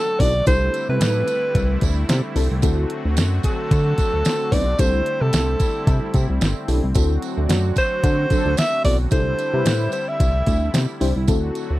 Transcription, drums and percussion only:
0.20 kick medium
0.20 open hi-hat medium
0.20 tambourine medium
0.46 kick loud
0.46 closed hi-hat loud
0.46 tambourine medium
0.74 closed hi-hat medium
0.74 tambourine soft
1.01 snare loud
1.01 closed hi-hat loud
1.01 tambourine medium
1.27 closed hi-hat medium
1.27 tambourine soft
1.55 kick loud
1.55 closed hi-hat medium
1.55 tambourine soft
1.81 kick medium
1.81 closed hi-hat medium
1.81 tambourine medium
2.09 snare loud
2.09 closed hi-hat loud
2.09 tambourine medium
2.36 open hi-hat medium
2.36 tambourine medium
2.62 kick loud
2.62 closed hi-hat loud
2.62 tambourine medium
2.90 closed hi-hat medium
3.17 snare loud
3.17 closed hi-hat loud
3.17 tambourine loud
3.43 kick medium
3.43 closed hi-hat medium
3.43 tambourine medium
3.71 kick loud
3.71 closed hi-hat medium
3.71 tambourine soft
3.98 kick loud
3.98 closed hi-hat medium
3.98 tambourine medium
4.25 snare loud
4.25 closed hi-hat loud
4.25 tambourine medium
4.52 kick loud
4.52 open hi-hat medium
4.52 tambourine medium
4.79 kick loud
4.79 closed hi-hat loud
4.79 tambourine medium
5.06 closed hi-hat medium
5.33 snare loud
5.33 closed hi-hat loud
5.33 tambourine medium
5.60 kick medium
5.60 closed hi-hat medium
5.60 tambourine medium
5.87 kick loud
5.87 closed hi-hat medium
5.87 tambourine soft
6.14 kick loud
6.14 closed hi-hat medium
6.14 tambourine medium
6.41 snare loud
6.41 closed hi-hat loud
6.41 tambourine medium
6.68 open hi-hat medium
6.68 tambourine medium
6.94 kick loud
6.94 closed hi-hat loud
6.94 tambourine medium
7.22 closed hi-hat medium
7.22 tambourine soft
7.49 snare loud
7.49 closed hi-hat loud
7.49 tambourine medium
7.76 kick medium
7.76 closed hi-hat medium
7.76 tambourine medium
8.04 kick loud
8.04 closed hi-hat medium
8.04 tambourine soft
8.30 kick loud
8.30 closed hi-hat medium
8.30 tambourine medium
8.57 snare loud
8.57 closed hi-hat loud
8.57 tambourine medium
8.85 kick medium
8.85 open hi-hat medium
8.85 tambourine medium
9.11 kick loud
9.11 closed hi-hat loud
9.11 tambourine medium
9.39 closed hi-hat medium
9.39 tambourine soft
9.66 snare loud
9.66 closed hi-hat loud
9.66 tambourine medium
9.92 closed hi-hat medium
9.92 tambourine medium
10.20 kick loud
10.20 closed hi-hat medium
10.20 tambourine soft
10.47 kick loud
10.47 closed hi-hat medium
10.47 tambourine soft
10.74 snare loud
10.74 closed hi-hat loud
10.74 tambourine medium
11.01 open hi-hat medium
11.01 tambourine medium
11.27 kick loud
11.27 closed hi-hat loud
11.27 tambourine medium
11.55 closed hi-hat medium
11.55 tambourine soft

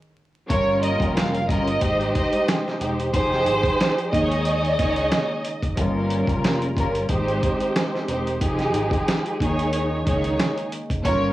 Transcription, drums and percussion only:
0.50 kick loud
0.50 closed hi-hat loud
0.83 closed hi-hat medium
1.00 kick loud
1.00 closed hi-hat soft
1.17 snare loud
1.17 closed hi-hat medium
1.35 closed hi-hat soft
1.49 kick loud
1.49 closed hi-hat medium
1.68 closed hi-hat medium
1.81 kick medium
1.81 closed hi-hat medium
2.01 closed hi-hat soft
2.15 kick loud
2.15 closed hi-hat medium
2.33 closed hi-hat medium
2.48 snare loud
2.48 closed hi-hat medium
2.68 snare soft
2.81 closed hi-hat medium
3.00 closed hi-hat medium
3.14 kick loud
3.14 closed hi-hat loud
3.33 snare soft
3.46 closed hi-hat medium
3.64 kick loud
3.64 closed hi-hat soft
3.81 snare loud
3.81 closed hi-hat medium
3.98 closed hi-hat soft
4.13 kick loud
4.13 closed hi-hat medium
4.32 closed hi-hat medium
4.45 closed hi-hat medium
4.65 closed hi-hat soft
4.79 kick loud
4.79 closed hi-hat medium
4.96 closed hi-hat medium
5.12 snare loud
5.12 closed hi-hat medium
5.45 closed hi-hat medium
5.63 kick medium
5.63 closed hi-hat medium
5.77 kick loud
5.77 closed hi-hat loud
6.10 closed hi-hat medium
6.27 kick loud
6.27 closed hi-hat soft
6.44 snare loud
6.44 closed hi-hat medium
6.62 closed hi-hat soft
6.77 kick loud
6.77 closed hi-hat medium
6.95 closed hi-hat medium
7.09 kick medium
7.09 closed hi-hat medium
7.28 closed hi-hat soft
7.43 kick loud
7.43 closed hi-hat medium
7.60 closed hi-hat medium
7.76 snare loud
7.76 closed hi-hat medium
7.95 snare soft
8.08 closed hi-hat medium
8.27 closed hi-hat medium
8.41 kick loud
8.41 closed hi-hat loud
8.59 snare soft
8.59 closed hi-hat soft
8.74 closed hi-hat medium
8.91 kick loud
8.91 closed hi-hat soft
9.08 snare loud
9.08 closed hi-hat medium
9.26 closed hi-hat soft
9.40 kick medium
9.40 closed hi-hat medium
9.59 closed hi-hat medium
9.73 closed hi-hat medium
10.07 kick loud
10.07 closed hi-hat medium
10.24 closed hi-hat medium
10.40 snare loud
10.40 closed hi-hat medium
10.58 closed hi-hat soft
10.72 closed hi-hat medium
10.90 kick medium
10.90 closed hi-hat medium
11.05 kick loud
11.05 closed hi-hat loud

